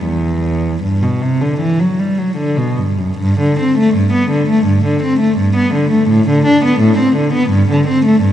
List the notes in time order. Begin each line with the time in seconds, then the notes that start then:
0.05 E2
0.83 G2
1.02 B2
1.22 C3
1.41 D3
1.60 E3
1.80 F#3
2.00 G3
2.19 F#3
2.38 D3
2.57 B2
2.78 G2
2.98 F#2
3.18 G2
3.40 D3
3.60 C4
3.78 A3
3.95 G2
4.13 B3
4.31 D3
4.48 A3
4.66 G2
4.85 D3
5.03 C4
5.20 A3
5.38 G2
5.56 B3
5.74 D3
5.91 A3
6.09 A2
6.29 D3
6.46 D4
6.64 B3
6.80 A2
6.98 C4
7.16 D3
7.33 B3
7.50 G2
7.70 D3
7.87 C4
8.05 A3
8.22 G2